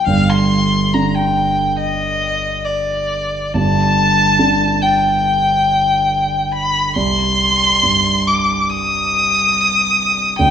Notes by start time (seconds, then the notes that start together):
0.07 G1 G2 F5
0.29 C6
0.94 D3 A#5
1.14 G5
1.78 D#5
2.65 D5
3.54 G1 G2 A5
4.39 D3
4.82 G5
6.52 B5
6.96 C2 C6
7.83 G2
8.27 D6
8.70 D#6
10.38 D2 G5